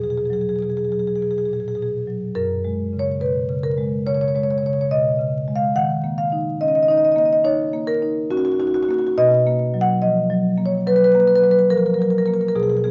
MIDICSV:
0, 0, Header, 1, 2, 480
1, 0, Start_track
1, 0, Key_signature, 6, "major"
1, 0, Tempo, 873362
1, 1292, Time_signature, 4, 2, 24, 8
1, 1764, Tempo, 851064
1, 7234, End_track
2, 0, Start_track
2, 0, Title_t, "Marimba"
2, 0, Program_c, 0, 12
2, 0, Note_on_c, 0, 40, 55
2, 6, Note_on_c, 0, 47, 39
2, 19, Note_on_c, 0, 68, 57
2, 56, Note_off_c, 0, 68, 0
2, 56, Note_on_c, 0, 68, 54
2, 96, Note_off_c, 0, 68, 0
2, 96, Note_on_c, 0, 68, 58
2, 140, Note_off_c, 0, 68, 0
2, 140, Note_on_c, 0, 68, 50
2, 165, Note_on_c, 0, 54, 36
2, 182, Note_off_c, 0, 68, 0
2, 182, Note_on_c, 0, 68, 55
2, 227, Note_off_c, 0, 68, 0
2, 227, Note_on_c, 0, 68, 56
2, 263, Note_off_c, 0, 47, 0
2, 269, Note_off_c, 0, 68, 0
2, 269, Note_on_c, 0, 68, 56
2, 306, Note_off_c, 0, 68, 0
2, 306, Note_on_c, 0, 68, 51
2, 307, Note_off_c, 0, 40, 0
2, 325, Note_on_c, 0, 47, 40
2, 343, Note_off_c, 0, 68, 0
2, 343, Note_on_c, 0, 68, 58
2, 382, Note_off_c, 0, 68, 0
2, 382, Note_on_c, 0, 68, 52
2, 423, Note_off_c, 0, 68, 0
2, 423, Note_on_c, 0, 68, 60
2, 424, Note_off_c, 0, 54, 0
2, 464, Note_off_c, 0, 68, 0
2, 464, Note_on_c, 0, 68, 50
2, 491, Note_on_c, 0, 54, 34
2, 506, Note_off_c, 0, 68, 0
2, 506, Note_on_c, 0, 68, 57
2, 547, Note_off_c, 0, 68, 0
2, 547, Note_on_c, 0, 68, 54
2, 585, Note_off_c, 0, 47, 0
2, 590, Note_off_c, 0, 68, 0
2, 590, Note_on_c, 0, 68, 56
2, 635, Note_off_c, 0, 68, 0
2, 635, Note_on_c, 0, 68, 54
2, 650, Note_on_c, 0, 47, 33
2, 673, Note_off_c, 0, 68, 0
2, 673, Note_on_c, 0, 68, 57
2, 718, Note_off_c, 0, 68, 0
2, 718, Note_on_c, 0, 68, 54
2, 748, Note_off_c, 0, 54, 0
2, 759, Note_off_c, 0, 68, 0
2, 759, Note_on_c, 0, 68, 58
2, 799, Note_off_c, 0, 68, 0
2, 799, Note_on_c, 0, 68, 52
2, 814, Note_on_c, 0, 46, 33
2, 841, Note_off_c, 0, 68, 0
2, 841, Note_on_c, 0, 68, 54
2, 880, Note_off_c, 0, 68, 0
2, 880, Note_on_c, 0, 68, 51
2, 908, Note_off_c, 0, 47, 0
2, 923, Note_off_c, 0, 68, 0
2, 923, Note_on_c, 0, 68, 58
2, 962, Note_off_c, 0, 68, 0
2, 962, Note_on_c, 0, 68, 51
2, 971, Note_on_c, 0, 47, 36
2, 974, Note_off_c, 0, 46, 0
2, 1002, Note_off_c, 0, 68, 0
2, 1002, Note_on_c, 0, 68, 57
2, 1032, Note_off_c, 0, 68, 0
2, 1140, Note_on_c, 0, 54, 34
2, 1228, Note_off_c, 0, 47, 0
2, 1292, Note_on_c, 0, 42, 71
2, 1293, Note_on_c, 0, 70, 94
2, 1295, Note_off_c, 0, 54, 0
2, 1454, Note_on_c, 0, 56, 49
2, 1610, Note_on_c, 0, 49, 48
2, 1632, Note_off_c, 0, 70, 0
2, 1645, Note_on_c, 0, 73, 87
2, 1703, Note_off_c, 0, 56, 0
2, 1763, Note_off_c, 0, 73, 0
2, 1764, Note_on_c, 0, 47, 43
2, 1765, Note_on_c, 0, 71, 73
2, 1861, Note_off_c, 0, 49, 0
2, 1922, Note_on_c, 0, 49, 55
2, 1924, Note_off_c, 0, 47, 0
2, 1995, Note_off_c, 0, 71, 0
2, 2003, Note_on_c, 0, 70, 83
2, 2083, Note_on_c, 0, 56, 55
2, 2179, Note_off_c, 0, 49, 0
2, 2222, Note_off_c, 0, 42, 0
2, 2234, Note_off_c, 0, 70, 0
2, 2243, Note_on_c, 0, 49, 55
2, 2247, Note_on_c, 0, 73, 90
2, 2292, Note_off_c, 0, 73, 0
2, 2292, Note_on_c, 0, 73, 72
2, 2330, Note_off_c, 0, 73, 0
2, 2330, Note_on_c, 0, 73, 80
2, 2340, Note_off_c, 0, 56, 0
2, 2368, Note_off_c, 0, 73, 0
2, 2368, Note_on_c, 0, 73, 72
2, 2405, Note_on_c, 0, 56, 49
2, 2412, Note_off_c, 0, 73, 0
2, 2412, Note_on_c, 0, 73, 74
2, 2455, Note_off_c, 0, 73, 0
2, 2455, Note_on_c, 0, 73, 74
2, 2495, Note_off_c, 0, 73, 0
2, 2495, Note_on_c, 0, 73, 82
2, 2499, Note_off_c, 0, 49, 0
2, 2536, Note_off_c, 0, 73, 0
2, 2536, Note_on_c, 0, 73, 74
2, 2563, Note_on_c, 0, 49, 54
2, 2583, Note_off_c, 0, 73, 0
2, 2583, Note_on_c, 0, 73, 79
2, 2623, Note_off_c, 0, 73, 0
2, 2623, Note_on_c, 0, 73, 72
2, 2660, Note_off_c, 0, 56, 0
2, 2667, Note_off_c, 0, 73, 0
2, 2667, Note_on_c, 0, 73, 79
2, 2705, Note_off_c, 0, 73, 0
2, 2724, Note_on_c, 0, 75, 98
2, 2725, Note_on_c, 0, 47, 56
2, 2819, Note_off_c, 0, 49, 0
2, 2880, Note_on_c, 0, 49, 48
2, 2884, Note_off_c, 0, 47, 0
2, 3042, Note_on_c, 0, 56, 55
2, 3069, Note_off_c, 0, 75, 0
2, 3087, Note_on_c, 0, 77, 92
2, 3137, Note_off_c, 0, 49, 0
2, 3201, Note_on_c, 0, 51, 78
2, 3201, Note_on_c, 0, 78, 110
2, 3203, Note_off_c, 0, 56, 0
2, 3205, Note_off_c, 0, 77, 0
2, 3359, Note_on_c, 0, 58, 53
2, 3432, Note_off_c, 0, 78, 0
2, 3439, Note_on_c, 0, 77, 86
2, 3520, Note_on_c, 0, 63, 48
2, 3617, Note_off_c, 0, 58, 0
2, 3671, Note_off_c, 0, 77, 0
2, 3681, Note_on_c, 0, 75, 89
2, 3682, Note_on_c, 0, 61, 45
2, 3722, Note_off_c, 0, 75, 0
2, 3722, Note_on_c, 0, 75, 69
2, 3763, Note_off_c, 0, 75, 0
2, 3763, Note_on_c, 0, 75, 75
2, 3777, Note_off_c, 0, 63, 0
2, 3804, Note_off_c, 0, 75, 0
2, 3804, Note_on_c, 0, 75, 75
2, 3837, Note_on_c, 0, 63, 62
2, 3842, Note_off_c, 0, 61, 0
2, 3849, Note_off_c, 0, 75, 0
2, 3849, Note_on_c, 0, 75, 78
2, 3888, Note_off_c, 0, 75, 0
2, 3888, Note_on_c, 0, 75, 73
2, 3928, Note_off_c, 0, 75, 0
2, 3928, Note_on_c, 0, 75, 80
2, 3968, Note_off_c, 0, 75, 0
2, 3968, Note_on_c, 0, 75, 71
2, 3991, Note_on_c, 0, 58, 56
2, 4006, Note_off_c, 0, 75, 0
2, 4006, Note_on_c, 0, 75, 80
2, 4046, Note_off_c, 0, 75, 0
2, 4046, Note_on_c, 0, 75, 72
2, 4086, Note_off_c, 0, 75, 0
2, 4086, Note_on_c, 0, 75, 81
2, 4095, Note_off_c, 0, 63, 0
2, 4138, Note_off_c, 0, 51, 0
2, 4142, Note_off_c, 0, 75, 0
2, 4151, Note_on_c, 0, 63, 61
2, 4154, Note_on_c, 0, 73, 107
2, 4252, Note_off_c, 0, 58, 0
2, 4314, Note_on_c, 0, 58, 60
2, 4388, Note_off_c, 0, 73, 0
2, 4394, Note_on_c, 0, 70, 102
2, 4412, Note_off_c, 0, 63, 0
2, 4479, Note_on_c, 0, 63, 55
2, 4573, Note_off_c, 0, 58, 0
2, 4628, Note_off_c, 0, 70, 0
2, 4638, Note_on_c, 0, 61, 56
2, 4638, Note_on_c, 0, 66, 104
2, 4675, Note_off_c, 0, 66, 0
2, 4675, Note_on_c, 0, 66, 87
2, 4719, Note_off_c, 0, 66, 0
2, 4719, Note_on_c, 0, 66, 90
2, 4736, Note_off_c, 0, 63, 0
2, 4758, Note_off_c, 0, 66, 0
2, 4758, Note_on_c, 0, 66, 80
2, 4801, Note_off_c, 0, 61, 0
2, 4802, Note_off_c, 0, 66, 0
2, 4802, Note_on_c, 0, 66, 93
2, 4805, Note_on_c, 0, 63, 53
2, 4844, Note_off_c, 0, 66, 0
2, 4844, Note_on_c, 0, 66, 84
2, 4885, Note_off_c, 0, 66, 0
2, 4885, Note_on_c, 0, 66, 94
2, 4932, Note_off_c, 0, 66, 0
2, 4932, Note_on_c, 0, 66, 86
2, 4966, Note_on_c, 0, 58, 58
2, 4976, Note_off_c, 0, 66, 0
2, 4976, Note_on_c, 0, 66, 94
2, 5021, Note_off_c, 0, 66, 0
2, 5021, Note_on_c, 0, 66, 83
2, 5066, Note_off_c, 0, 63, 0
2, 5067, Note_off_c, 0, 66, 0
2, 5067, Note_on_c, 0, 66, 84
2, 5109, Note_off_c, 0, 66, 0
2, 5129, Note_off_c, 0, 58, 0
2, 5129, Note_on_c, 0, 47, 97
2, 5130, Note_on_c, 0, 75, 127
2, 5293, Note_on_c, 0, 58, 64
2, 5447, Note_on_c, 0, 54, 59
2, 5474, Note_off_c, 0, 75, 0
2, 5488, Note_on_c, 0, 78, 116
2, 5544, Note_off_c, 0, 58, 0
2, 5604, Note_on_c, 0, 75, 86
2, 5606, Note_off_c, 0, 78, 0
2, 5606, Note_on_c, 0, 53, 51
2, 5699, Note_off_c, 0, 54, 0
2, 5762, Note_on_c, 0, 54, 62
2, 5763, Note_off_c, 0, 53, 0
2, 5919, Note_on_c, 0, 58, 54
2, 5946, Note_off_c, 0, 75, 0
2, 5963, Note_on_c, 0, 73, 86
2, 6016, Note_off_c, 0, 54, 0
2, 6058, Note_off_c, 0, 47, 0
2, 6082, Note_off_c, 0, 73, 0
2, 6084, Note_on_c, 0, 54, 59
2, 6085, Note_on_c, 0, 71, 103
2, 6135, Note_off_c, 0, 71, 0
2, 6135, Note_on_c, 0, 71, 84
2, 6175, Note_off_c, 0, 58, 0
2, 6181, Note_off_c, 0, 71, 0
2, 6181, Note_on_c, 0, 71, 93
2, 6225, Note_off_c, 0, 71, 0
2, 6225, Note_on_c, 0, 71, 79
2, 6241, Note_on_c, 0, 58, 61
2, 6271, Note_off_c, 0, 71, 0
2, 6271, Note_on_c, 0, 71, 84
2, 6313, Note_off_c, 0, 71, 0
2, 6313, Note_on_c, 0, 71, 81
2, 6338, Note_off_c, 0, 54, 0
2, 6358, Note_off_c, 0, 71, 0
2, 6358, Note_on_c, 0, 71, 93
2, 6396, Note_on_c, 0, 54, 53
2, 6404, Note_off_c, 0, 71, 0
2, 6404, Note_on_c, 0, 71, 80
2, 6447, Note_off_c, 0, 71, 0
2, 6447, Note_on_c, 0, 71, 93
2, 6490, Note_off_c, 0, 71, 0
2, 6490, Note_on_c, 0, 71, 82
2, 6497, Note_off_c, 0, 58, 0
2, 6544, Note_off_c, 0, 71, 0
2, 6555, Note_on_c, 0, 70, 87
2, 6556, Note_on_c, 0, 53, 49
2, 6595, Note_off_c, 0, 70, 0
2, 6595, Note_on_c, 0, 70, 72
2, 6643, Note_off_c, 0, 70, 0
2, 6643, Note_on_c, 0, 70, 70
2, 6654, Note_off_c, 0, 54, 0
2, 6688, Note_off_c, 0, 70, 0
2, 6688, Note_on_c, 0, 70, 69
2, 6712, Note_on_c, 0, 54, 49
2, 6719, Note_off_c, 0, 53, 0
2, 6732, Note_off_c, 0, 70, 0
2, 6732, Note_on_c, 0, 70, 78
2, 6780, Note_off_c, 0, 70, 0
2, 6780, Note_on_c, 0, 70, 67
2, 6824, Note_off_c, 0, 70, 0
2, 6824, Note_on_c, 0, 70, 75
2, 6867, Note_off_c, 0, 70, 0
2, 6867, Note_on_c, 0, 70, 73
2, 6876, Note_on_c, 0, 58, 50
2, 6912, Note_off_c, 0, 70, 0
2, 6912, Note_on_c, 0, 70, 74
2, 6952, Note_off_c, 0, 70, 0
2, 6952, Note_on_c, 0, 70, 66
2, 6974, Note_off_c, 0, 54, 0
2, 6994, Note_off_c, 0, 70, 0
2, 6994, Note_on_c, 0, 70, 75
2, 7020, Note_off_c, 0, 70, 0
2, 7034, Note_on_c, 0, 47, 67
2, 7035, Note_on_c, 0, 68, 91
2, 7040, Note_off_c, 0, 58, 0
2, 7076, Note_off_c, 0, 68, 0
2, 7076, Note_on_c, 0, 68, 75
2, 7115, Note_off_c, 0, 68, 0
2, 7115, Note_on_c, 0, 68, 75
2, 7155, Note_off_c, 0, 68, 0
2, 7155, Note_on_c, 0, 68, 76
2, 7196, Note_off_c, 0, 68, 0
2, 7196, Note_on_c, 0, 68, 76
2, 7203, Note_on_c, 0, 59, 46
2, 7234, Note_off_c, 0, 47, 0
2, 7234, Note_off_c, 0, 59, 0
2, 7234, Note_off_c, 0, 68, 0
2, 7234, End_track
0, 0, End_of_file